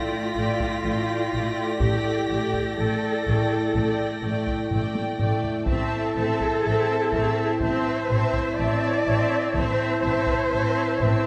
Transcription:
0.00 0.34 A2 medium
0.00 0.35 A3 soft
0.00 3.72 A3 soft
0.00 1.77 F4 medium
0.00 0.35 D5 soft
0.00 0.34 G5 soft
0.00 2.63 A#6 soft
0.00 2.63 B6 soft
0.35 0.43 A1 soft
0.35 0.83 A2 soft
0.35 0.83 A3 soft
0.35 0.83 D5 soft
0.35 0.83 G5 soft
0.60 taiko medium
0.84 0.92 A1 soft
0.84 1.31 A2 medium
0.84 1.31 A3 soft
0.84 1.32 D5 soft
0.84 1.31 G5 soft
1.32 1.41 A1 soft
1.32 1.79 A2 soft
1.32 1.80 A3 soft
1.32 1.80 D5 soft
1.32 1.79 G5 soft
1.80 1.89 A1 soft
1.80 2.28 A2 medium
1.80 2.28 A3 medium
1.80 2.77 G4 medium
1.80 2.28 D5 soft
1.80 2.28 G5 soft
1.80 taiko medium
2.29 2.38 A1 soft
2.29 2.76 A2 soft
2.29 2.77 A3 soft
2.29 2.77 D5 soft
2.29 2.76 G5 soft
2.53 taiko medium
2.63 4.19 A#6 soft
2.77 2.86 A1 soft
2.77 3.24 A2 soft
2.77 3.25 A3 soft
2.77 4.22 A4 medium
2.77 3.25 D5 soft
2.77 3.23 G5 soft
3.25 3.35 A1 soft
3.25 4.21 A2 medium
3.25 3.73 A3 soft
3.25 3.74 D5 soft
3.25 3.71 G5 soft
3.25 taiko medium
3.72 3.83 A1 soft
3.72 7.61 A3 soft
3.72 4.22 A3 soft
3.72 4.20 G5 soft
3.72 taiko medium
3.76 4.23 D5 soft
4.22 4.31 A1 soft
4.22 4.69 A2 soft
4.22 4.70 A3 soft
4.22 4.71 D5 soft
4.22 4.69 G5 soft
4.46 taiko medium
4.70 4.80 A1 soft
4.70 5.18 A2 medium
4.70 5.18 A3 soft
4.70 5.19 D5 soft
4.70 5.17 G5 soft
4.70 taiko low-mid medium
4.95 taiko high medium
5.19 5.28 A1 soft
5.19 5.67 A2 soft
5.19 5.67 A3 soft
5.19 5.67 D5 soft
5.19 5.66 G5 soft
5.19 taiko low-mid medium
5.43 taiko low medium
5.66 5.76 A1 medium
5.66 6.15 A2 medium
5.66 6.15 C4 medium
5.66 7.57 A4 medium
5.66 6.15 E5 soft
5.66 6.14 A5 medium
5.66 taiko medium
6.16 6.25 A1 soft
6.16 6.65 A2 soft
6.16 6.64 C4 soft
6.16 6.64 E5 soft
6.16 6.62 A5 soft
6.40 taiko medium
6.63 6.73 A1 soft
6.63 7.13 A2 soft
6.63 7.13 C4 medium
6.63 7.12 E5 soft
6.63 7.11 A5 soft
7.12 7.20 A1 soft
7.12 8.09 A2 medium
7.12 7.61 C4 soft
7.12 7.61 E5 soft
7.12 7.59 A5 soft
7.12 taiko medium
7.60 7.69 A1 medium
7.60 11.27 A3 soft
7.60 8.09 C4 medium
7.60 8.58 C5 medium
7.60 8.09 E5 soft
7.60 8.08 A5 soft
7.60 taiko medium
8.09 8.17 A1 soft
8.09 8.58 A2 soft
8.09 8.57 C4 soft
8.09 8.57 E5 medium
8.09 8.56 A5 soft
8.33 taiko medium
8.57 8.67 A1 soft
8.57 9.06 A2 medium
8.57 9.05 C4 soft
8.57 9.55 D5 medium
8.57 9.04 E5 soft
8.57 9.03 A5 medium
9.05 9.15 A1 medium
9.05 9.55 A2 soft
9.05 9.54 C4 medium
9.05 9.53 E5 soft
9.05 9.52 A5 soft
9.53 9.63 A1 medium
9.53 10.04 A2 medium
9.53 10.02 C4 medium
9.53 11.27 C5 medium
9.53 10.00 E5 medium
9.53 10.01 A5 medium
9.53 taiko medium
10.01 10.12 A1 medium
10.01 10.52 A2 soft
10.01 10.51 C4 soft
10.01 10.50 E5 soft
10.01 10.50 A5 medium
10.27 taiko medium
10.51 10.61 A1 soft
10.51 10.99 A2 soft
10.51 10.99 C4 soft
10.51 10.98 E5 soft
10.51 10.99 A5 soft
10.99 11.09 A1 medium
10.99 11.27 A2 medium
10.99 11.27 C4 soft
10.99 11.27 E5 soft
10.99 11.27 A5 soft
10.99 taiko medium

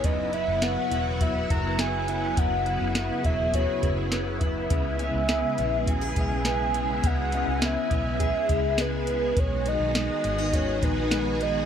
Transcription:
0.00 0.62 B3 medium
0.00 9.33 B3 medium
0.00 0.33 C#4 medium
0.00 9.33 E4 medium
0.00 0.10 G#4 medium
0.00 closed hi-hat medium
0.04 0.46 F#1 medium
0.04 2.36 F#2 medium
0.04 9.33 C#3 medium
0.04 4.67 F#3 medium
0.04 2.35 F#4 medium
0.04 0.35 D#5 loud
0.04 kick medium
0.33 0.91 E4 medium
0.33 0.65 E5 medium
0.33 closed hi-hat soft
0.48 0.76 F#1 medium
0.62 1.78 B3 soft
0.62 1.23 F#5 medium
0.62 snare medium
0.62 closed hi-hat medium
0.91 1.47 E1 medium
0.91 1.49 E4 medium
0.91 closed hi-hat soft
1.21 3.52 F#4 medium
1.21 1.50 E5 medium
1.21 kick medium
1.21 closed hi-hat medium
1.49 2.34 F#1 medium
1.49 2.07 E4 soft
1.49 1.82 A#5 medium
1.49 kick medium
1.49 closed hi-hat soft
1.78 2.94 B3 medium
1.78 2.40 G#5 medium
1.78 snare medium
1.78 closed hi-hat medium
2.08 2.66 E4 medium
2.08 closed hi-hat soft
2.37 2.79 F#1 medium
2.37 4.70 F#2 medium
2.37 4.68 G#4 medium
2.37 3.27 F#5 loud
2.37 kick loud
2.37 closed hi-hat medium
2.66 3.23 E4 medium
2.66 closed hi-hat soft
2.81 3.09 F#1 medium
2.95 4.11 B3 medium
2.95 snare medium
2.95 closed hi-hat medium
3.24 3.66 E1 medium
3.24 3.82 E4 soft
3.24 3.54 E5 medium
3.24 kick medium
3.24 closed hi-hat soft
3.53 4.76 F#4 medium
3.53 4.38 C#5 medium
3.53 kick medium
3.53 closed hi-hat medium
3.82 4.66 F#1 medium
3.82 4.40 E4 medium
3.82 kick medium
3.82 closed hi-hat soft
4.12 5.02 B3 medium
4.12 snare medium
4.12 closed hi-hat medium
4.41 4.99 E4 soft
4.41 kick medium
4.41 closed hi-hat soft
4.70 5.12 C#2 medium
4.70 7.02 C#3 medium
4.70 11.65 G#3 medium
4.70 9.33 G#4 medium
4.70 kick medium
4.70 closed hi-hat medium
4.99 5.56 C#4 medium
4.99 5.84 E5 loud
4.99 closed hi-hat soft
5.14 5.42 C#2 medium
5.28 6.45 B3 medium
5.28 snare medium
5.28 closed hi-hat medium
5.57 6.14 A#1 medium
5.57 6.15 C#4 soft
5.57 closed hi-hat soft
5.87 6.01 F#4 medium
5.87 7.08 G#5 loud
5.87 kick medium
5.87 closed hi-hat medium
6.01 8.18 G#4 soft
6.16 7.00 B1 medium
6.16 6.73 C#4 soft
6.16 kick medium
6.16 closed hi-hat soft
6.45 7.61 B3 medium
6.45 snare medium
6.45 closed hi-hat medium
6.74 7.31 C#4 soft
6.74 closed hi-hat soft
7.03 7.45 C#2 medium
7.03 9.36 C#3 medium
7.03 7.67 F#5 loud
7.03 kick loud
7.03 closed hi-hat medium
7.32 7.89 C#4 medium
7.32 closed hi-hat soft
7.47 7.75 C#2 medium
7.61 8.78 B3 medium
7.61 snare medium
7.61 closed hi-hat medium
7.65 8.83 E5 loud
7.91 8.32 B1 medium
7.91 8.48 C#4 medium
7.91 kick medium
7.91 closed hi-hat soft
8.20 10.52 G#4 medium
8.20 kick medium
8.20 closed hi-hat medium
8.49 9.33 C#2 medium
8.49 9.06 C#4 medium
8.49 kick medium
8.49 closed hi-hat soft
8.78 9.94 B3 medium
8.78 9.41 B4 medium
8.78 snare medium
8.78 closed hi-hat medium
9.07 9.42 C#4 soft
9.07 closed hi-hat soft
9.36 9.78 B1 medium
9.36 11.65 D#3 medium
9.36 11.65 B3 medium
9.36 11.65 F#4 medium
9.36 11.65 G#4 medium
9.36 9.70 C#5 loud
9.36 kick loud
9.36 closed hi-hat medium
9.65 10.23 D#4 medium
9.65 9.96 D#5 medium
9.65 closed hi-hat soft
9.80 10.08 B1 medium
9.95 11.10 G#3 medium
9.95 10.56 D#5 medium
9.95 snare medium
9.95 closed hi-hat medium
10.24 10.79 G#1 medium
10.24 10.38 C#4 medium
10.24 closed hi-hat soft
10.38 10.80 D#4 soft
10.53 11.65 F#4 medium
10.53 10.86 C#5 medium
10.53 kick medium
10.53 closed hi-hat medium
10.82 11.65 A#1 medium
10.82 11.38 D#4 medium
10.82 11.44 B4 medium
10.82 kick medium
10.82 closed hi-hat soft
11.11 11.65 G#3 medium
11.11 snare medium
11.11 closed hi-hat medium
11.40 11.65 D#4 soft
11.40 11.65 D#5 medium
11.40 closed hi-hat soft

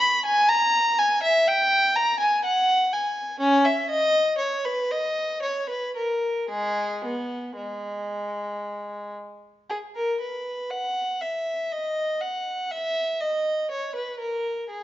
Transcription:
0.00 0.24 B5 loud
0.26 0.49 G#5 loud
0.49 0.98 A#5 loud
0.99 1.23 G#5 loud
1.23 1.47 E5 loud
1.48 1.96 G5 loud
1.96 2.20 A#5 loud
2.20 2.44 G#5 loud
2.45 2.93 F#5 loud
2.93 3.42 G#5 medium
3.40 3.65 C#4 loud
3.65 3.90 E5 medium
3.90 4.39 D#5 loud
4.38 4.64 C#5 loud
4.65 4.91 B4 medium
4.91 5.43 D#5 medium
5.42 5.69 C#5 medium
5.69 5.95 B4 medium
5.96 6.48 A#4 medium
6.49 6.99 G#3 medium
6.49 7.02 G#4 medium
7.04 7.57 B3 medium
7.57 9.14 G#3 medium
9.70 9.78 G#4 medium
9.96 10.20 A#4 medium
10.20 10.69 B4 medium
10.70 11.20 F#5 medium
11.21 11.71 E5 medium
11.72 12.21 D#5 medium
12.22 12.71 F#5 medium
12.71 13.20 E5 medium
13.21 13.70 D#5 medium
13.71 13.95 C#5 medium
13.95 14.19 B4 medium
14.20 14.68 A#4 medium
14.70 14.83 G#4 medium

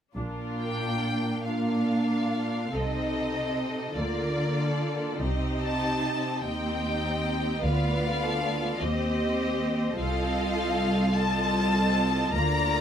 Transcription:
0.16 0.99 A#1 soft
0.16 2.69 A#2 soft
0.16 1.42 D4 soft
0.16 1.42 F4 soft
0.16 1.42 A#4 soft
0.60 1.43 G5 soft
1.46 2.71 D4 soft
1.46 2.71 F4 soft
1.46 2.71 A#4 soft
1.46 2.74 F5 soft
2.72 3.50 C2 soft
2.72 3.93 C3 soft
2.72 3.93 C4 soft
2.72 3.96 D#4 soft
2.72 3.93 A4 soft
2.72 3.97 D#5 medium
3.95 4.75 D2 soft
3.95 5.18 D3 soft
3.95 5.18 A#3 soft
3.95 5.18 F4 soft
3.95 4.58 A#4 soft
3.95 5.20 D5 soft
3.95 5.21 D5 soft
4.60 5.21 A4 soft
5.19 5.98 C2 soft
5.19 6.43 C3 soft
5.19 6.40 C4 soft
5.19 6.43 D#4 soft
5.19 6.42 G4 soft
5.19 6.41 D#5 soft
5.62 6.39 A5 medium
6.43 7.63 D#2 soft
6.43 7.61 C4 soft
6.43 7.61 D#4 soft
6.43 7.61 G4 soft
6.43 7.61 D#5 soft
6.43 7.63 G5 soft
7.62 8.38 D2 soft
7.62 8.80 D2 soft
7.62 8.80 B3 soft
7.62 8.82 F4 soft
7.62 8.21 B4 soft
7.62 8.82 D5 soft
7.62 8.80 F5 medium
8.22 8.82 A4 soft
8.81 9.55 D#2 soft
8.81 9.96 D#2 soft
8.81 9.96 C4 soft
8.81 9.98 G4 soft
8.81 9.98 C5 soft
8.81 9.98 D#5 medium
9.97 10.72 C2 soft
9.97 12.29 C2 soft
9.97 11.14 C4 soft
9.97 11.14 F4 soft
9.97 11.14 A4 soft
9.97 11.15 D#5 soft
9.97 11.14 F5 medium
11.16 12.32 C4 soft
11.16 12.32 F4 soft
11.16 12.31 A4 soft
11.16 12.31 D#5 soft
11.16 12.33 A5 medium
12.32 12.81 D2 soft
12.32 12.81 A#3 soft
12.32 12.81 F4 soft
12.32 12.81 A#4 soft
12.32 12.81 D5 soft
12.32 12.81 A#5 medium

